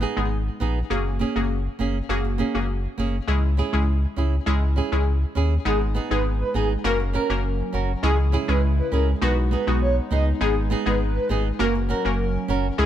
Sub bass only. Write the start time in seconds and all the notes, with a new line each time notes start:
0.17 G#1
0.61 A#1
0.90 F#1
1.36 F#1
1.79 F#1
2.09 F#1
2.55 F#1
2.98 F#1
3.28 C#2
3.73 C#2
4.17 C#2
4.47 C#2
4.92 C#2
5.36 D#2
5.66 G#1
6.11 G#1
6.55 G#1
6.84 F#1
7.30 F#1
7.73 F#1
8.03 C#2
8.49 C#2
8.92 C#2
9.22 B1
9.67 B1
10.11 C#2
10.41 G#1
10.86 G#1
11.30 G#1
11.60 F#1
12.05 F#1
12.49 F#1
12.78 C#2